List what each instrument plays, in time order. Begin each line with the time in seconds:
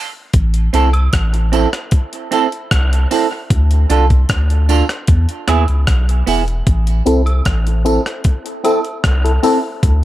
0.33 sub bass A1, kick, closed hi-hat
0.54 closed hi-hat
0.73 sub bass C2, clean electric guitar C4 E4 A4, closed hi-hat, tambourine
0.93 closed hi-hat, high woodblock
1.13 sub bass A1, kick, cross-stick, closed hi-hat
1.33 muted clean electric guitar stroke, closed hi-hat
1.52 clean electric guitar C4 E4 A4, closed hi-hat, tambourine
1.73 cross-stick, closed hi-hat
1.91 kick, closed hi-hat
2.13 closed hi-hat
2.31 clean electric guitar C4 E4 A4, closed hi-hat, tambourine
2.52 closed hi-hat
2.71 sub bass C2, kick, cross-stick, closed hi-hat
2.93 closed hi-hat
3.11 clean electric guitar C4 E4 A4, open hi-hat, tambourine
3.50 sub bass D2, kick, closed hi-hat
3.71 closed hi-hat
3.90 sub bass C2, clean electric guitar D4 F4 A4, closed hi-hat, tambourine
4.10 kick, closed hi-hat
4.29 sub bass D2, kick, cross-stick, closed hi-hat
4.50 closed hi-hat
4.69 clean electric guitar D4 F4 A4, closed hi-hat, tambourine
4.89 cross-stick, closed hi-hat
5.07 sub bass E2, kick, closed hi-hat
5.29 closed hi-hat
5.47 sub bass D#2, clean electric guitar B3 E4 G#4, cross-stick, closed hi-hat, tambourine, high woodblock
5.68 sub bass C#2, closed hi-hat
5.87 sub bass B1, kick, cross-stick, closed hi-hat
6.09 closed hi-hat
6.26 sub bass E1, clean electric guitar B3 E4 G#4, open hi-hat, tambourine
6.48 closed hi-hat
6.67 sub bass A1, kick, closed hi-hat
6.87 closed hi-hat
7.06 sub bass C2, synth stab C4 E4 A4, clean electric guitar C4 E4 A4, closed hi-hat, tambourine
7.26 closed hi-hat, high woodblock
7.45 sub bass A1, kick, cross-stick, closed hi-hat
7.66 muted clean electric guitar stroke, closed hi-hat
7.85 synth stab C4 E4 A4, clean electric guitar C4 E4 A4, closed hi-hat, tambourine
8.06 cross-stick, closed hi-hat
8.24 kick, closed hi-hat
8.46 closed hi-hat
8.64 synth stab C4 E4 A4, clean electric guitar C4 E4 A4, closed hi-hat, tambourine, high woodblock
8.85 closed hi-hat
9.04 sub bass C2, kick, cross-stick, closed hi-hat
9.24 synth stab E4 A4, closed hi-hat
9.43 synth stab C4 E4 A4, clean electric guitar C4 E4 A4, open hi-hat, tambourine
9.83 sub bass D2, kick, closed hi-hat